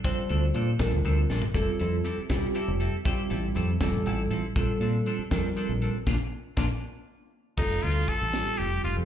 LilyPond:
<<
  \new Staff \with { instrumentName = "Muted trumpet" } { \time 6/8 \key bes \lydian \tempo 4. = 80 r2. | r2. | r2. | r2. |
r2. | \key f \mixolydian ees'8 f'8 a'4 g'8 f'8 | }
  \new Staff \with { instrumentName = "Clean electric guitar" } { \time 6/8 \key bes \lydian <f c' d' a'>8 <c' d' a'>8 <f c' d' a'>8 <f c' d' a'>8 <f c' d' a'>8 <c' d' a'>8 | <g c' e' a'>8 <c' e' a'>8 <g c' e' a'>8 <g c' e' a'>8 <g c' e' a'>8 <c' e' a'>8 | <g c' e' a'>8 <c' e' a'>8 <g c' e' a'>8 <g c' e' a'>8 <g c' e' a'>8 <c' e' a'>8 | <f c' d' a'>8 <c' d' a'>8 <f c' d' a'>8 <f c' d' a'>8 <f c' d' a'>8 <c' d' a'>8 |
<bes d' f'>8 r8 <bes d' f'>8 r4. | \key f \mixolydian r2. | }
  \new Staff \with { instrumentName = "Tine electric piano" } { \time 6/8 \key bes \lydian <g c' f' c''>4~ <g c' f' c''>16 r16 <g c' f' bes'>4~ <g c' f' bes'>16 r16 | <g c' f' a'>4~ <g c' f' a'>16 r16 <g c' f' g'>4~ <g c' f' g'>16 r16 | <g c' f' g'>4~ <g c' f' g'>16 r16 <g c' f' a'>4~ <g c' f' a'>16 r16 | <g c' f' a'>4~ <g c' f' a'>16 r16 <g c' f' bes'>4~ <g c' f' bes'>16 r16 |
<bes d' f'>8 r8 <bes d' f'>8 r4. | \key f \mixolydian <g c' f' a'>4~ <g c' f' a'>16 r16 <g c' f' g'>4~ <g c' f' g'>16 r16 | }
  \new Staff \with { instrumentName = "Fingered electric bass" } { \clef bass \time 6/8 \key bes \lydian r8 d,8 bes,8 bes,,16 d,16 d,8 bes,,16 r16 | f,,16 r16 f,8 r8 c,16 r8 f,,8 r16 | r8 a,,8 f,8 f,,16 a,,16 a,,8 a,,16 r16 | bes,,16 r16 bes,8 r8 f,16 r8 bes,,8 r16 |
bes,,16 r8. bes,,16 r4. r16 | \key f \mixolydian f,,8 d,8 r16 a,,8 r16 f,,8 f,,16 f,16 | }
  \new DrumStaff \with { instrumentName = "Drums" } \drummode { \time 6/8 <hh bd>8 hh8 hh8 <hh bd sn>8 hh8 sn16 tomfh16 | <hh bd>8 hh8 hh8 <hh bd sn>8 hh8 hh8 | <hh bd>8 hh8 hh8 <hh bd sn>8 hh8 hh8 | <hh bd>8 hh8 hh8 <hh bd sn>8 hh8 hh8 |
<bd sn>4 <bd sn>8 r4. | <cymc bd>8 hh8 <hh bd>8 <hh sn>8 hh8 hh8 | }
>>